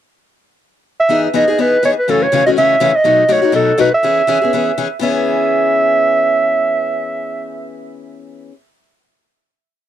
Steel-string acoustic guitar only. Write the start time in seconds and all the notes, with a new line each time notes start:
1.09 E3 B3 D#4 G#4
1.33 E3 B3 D#4 G#4
1.48 B3 D#4 G#4
1.58 E3 B3 D#4 G#4
1.83 E3 B3 D#4 G#4
2.08 F#2 C#3 E3 A3 C#4 F#4
2.32 F#2 C#3 E3 A3 C#4 F#4
2.47 E3 A3 C#4 F#4
2.57 F#2 C#3 E3 A3 C#4 F#4
2.80 F#2 C#3 E3 A3 C#4 F#4
3.04 B2 F#3 A3 D#4 F#4
3.28 B2 F#3 A3 D#4 F#4
3.42 A3 D#4 F#4
3.52 B2 F#3 A3 D#4 F#4
3.78 B2 F#3 A3 D#4 F#4
4.03 E3 B3 C#4 G#4
4.27 E3 B3 C#4 G#4
4.42 B3 C#4 G#4
4.53 E3 B3 C#4 G#4
4.78 E3 B3 C#4 G#4
4.99 E3 B3 C#4 G#4